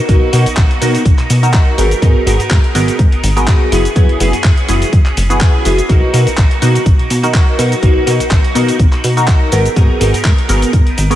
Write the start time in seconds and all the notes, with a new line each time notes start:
0.00 A#3
0.08 B1 F#3 A#3 B3 D#4 F#4 A#4, kick, closed hi-hat, shaker
0.22 B2
0.32 B2 F#3 A#3 B3 D#4 F#4 A#4, open hi-hat, shaker
0.45 B1 A#3 D#4 F#4, closed hi-hat, shaker
0.57 B1 F#3 A#3 D#4 F#4, kick, clap, closed hi-hat, shaker
0.71 closed hi-hat
0.80 B2 F#3 A#3 B3 D#4 F#4 A#4, open hi-hat, shaker
0.93 A#3 D#4 F#4, closed hi-hat, shaker
1.05 B1, kick, closed hi-hat, shaker
1.17 B2 A#3 D#4 F#4, clap, closed hi-hat
1.30 B2, open hi-hat, shaker
1.42 A#3 D#4 F#4 A#4, closed hi-hat, shaker
1.53 B1 F#3 A#3 D#4 F#4, kick, clap, closed hi-hat, shaker
1.77 G#1 F#3 B3 D#4 F#4 G#4 A#4, open hi-hat, shaker
1.91 closed hi-hat, shaker
2.01 G#2 F#3 B3 D#4 F#4 G#4 A#4, kick, closed hi-hat, shaker
2.16 G#1
2.25 G#1 F#3 B3 D#4 F#4 G#4 A#4, open hi-hat, shaker
2.38 G#2 B3 D#4 A#4, closed hi-hat, shaker
2.50 G#2 F#3 B3 D#4 A#4, kick, clap, closed hi-hat, shaker
2.64 closed hi-hat
2.73 G#1 F#3 B3 D#4 F#4 G#4 A#4, open hi-hat, shaker
2.87 B3 D#4 A#4, closed hi-hat, shaker
2.99 G#2, kick, closed hi-hat, shaker
3.11 G#1 B3 D#4 A#4, closed hi-hat
3.23 G#1, open hi-hat, shaker
3.35 B3 D#4 F#4 G#4 A#4, closed hi-hat, shaker
3.46 G#2 F#3 B3 D#4 A#4, kick, clap, closed hi-hat, shaker
3.71 F#1 E3 B3 C#4 E4 F#4 G#4, open hi-hat, shaker
3.85 closed hi-hat, shaker
3.95 F#2 E3 B3 C#4 E4 F#4 G#4, kick, closed hi-hat, shaker
4.09 F#1, closed hi-hat
4.20 F#1 E3 B3 C#4 E4 F#4 G#4, open hi-hat, shaker
4.32 F#2 B3 C#4 G#4, closed hi-hat, shaker
4.44 F#2 E3 B3 C#4 G#4, kick, clap, closed hi-hat, shaker
4.57 closed hi-hat
4.68 F#1 E3 B3 C#4 E4 F#4 G#4, open hi-hat, shaker
4.81 B3 C#4 G#4, closed hi-hat, shaker
4.93 F#2, kick, closed hi-hat, shaker
5.05 F#1 B3 C#4 G#4, clap, closed hi-hat
5.17 F#1, open hi-hat, shaker
5.29 B3 C#4 E4 F#4 G#4, closed hi-hat, shaker
5.40 F#2 E3 B3 C#4 G#4, kick, clap, closed hi-hat, shaker
5.64 F#1 E3 B3 C#4 E4 F#4 G#4, open hi-hat, shaker
5.78 closed hi-hat, shaker
5.88 B1 F#3 A#3 B3 D#4 F#4 A#4, kick, closed hi-hat, shaker
6.03 B2
6.12 B2 F#3 A#3 B3 D#4 F#4 A#4, open hi-hat, shaker
6.26 B1 A#3 D#4 F#4, closed hi-hat, shaker
6.37 B1 F#3 A#3 D#4 F#4, kick, clap, closed hi-hat, shaker
6.51 closed hi-hat
6.61 B2 F#3 A#3 B3 D#4 F#4 A#4, open hi-hat, shaker
6.74 A#3 D#4 F#4, closed hi-hat, shaker
6.86 B1, kick, closed hi-hat, shaker
6.98 B2 A#3 D#4 F#4, closed hi-hat
7.10 B2, open hi-hat, shaker
7.22 A#3 D#4 F#4 A#4, closed hi-hat, shaker
7.33 B1 F#3 A#3 D#4 F#4, kick, clap, closed hi-hat, shaker
7.57 B2 F#3 A#3 B3 D#4 F#4 A#4, open hi-hat, shaker
7.72 closed hi-hat, shaker
7.82 B1 F#3 A#3 B3 D#4 F#4 A#4, kick, closed hi-hat, shaker
7.96 B2
8.06 B2 F#3 A#3 B3 D#4 F#4 A#4, open hi-hat, shaker
8.19 B1 A#3 D#4 F#4, closed hi-hat, shaker
8.30 B1 F#3 A#3 D#4 F#4, kick, clap, closed hi-hat, shaker
8.44 closed hi-hat
8.54 B2 F#3 A#3 B3 D#4 F#4 A#4, open hi-hat, shaker
8.68 A#3 D#4 F#4, closed hi-hat, shaker
8.79 B1, kick, closed hi-hat, shaker
8.92 B2 A#3 D#4 F#4, clap, closed hi-hat
9.04 B2, open hi-hat, shaker
9.16 A#3 D#4 F#4 A#4, closed hi-hat, shaker
9.27 B1 F#3 A#3 D#4 F#4, kick, clap, closed hi-hat, shaker
9.51 G#1 F#3 B3 D#4 F#4 G#4 A#4, open hi-hat, shaker
9.65 closed hi-hat, shaker
9.76 G#2 F#3 B3 D#4 F#4 G#4 A#4, kick, closed hi-hat, shaker
9.90 G#1
10.00 G#1 F#3 B3 D#4 F#4 G#4 A#4, open hi-hat, shaker
10.13 B3 D#4 A#4, closed hi-hat, shaker
10.24 G#2 F#3 B3 D#4 A#4, kick, clap, closed hi-hat, shaker
10.38 closed hi-hat
10.48 G#1 F#3 B3 D#4 F#4 G#4 A#4, open hi-hat, shaker
10.61 B3 D#4 A#4, closed hi-hat, shaker
10.73 G#2, kick, closed hi-hat, shaker
10.85 G#1 B3 D#4 A#4, closed hi-hat
10.98 G#1, open hi-hat, shaker
11.10 B3 D#4 F#4 G#4 A#4, closed hi-hat, shaker